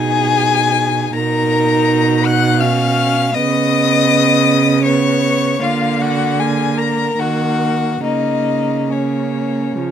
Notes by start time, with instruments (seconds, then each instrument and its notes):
Already playing: cello B2, viola D#4, violin G#4 G#5
1.14 cello B2, viola D#4, violin A#4 A#5
2.24 violin F#5 F#6
2.60 viola C#4, violin F5 F6
3.35 cello C#3, viola B3, violin D#5 D#6
4.84 viola B3, violin C#5 C#6
5.61 cello D3, viola A#3, violin F4 F5
6.00 violin F#4 F#5
6.39 viola A#3, violin G#4 G#5
6.78 violin A#4 A#5
7.18 cello D#3, viola A#3, violin F#4 F#5
8.04 cello C#3, viola A#3, violin D#4 D#5
8.90 viola A#3, violin C#4 C#5
9.75 cello C#3, viola F3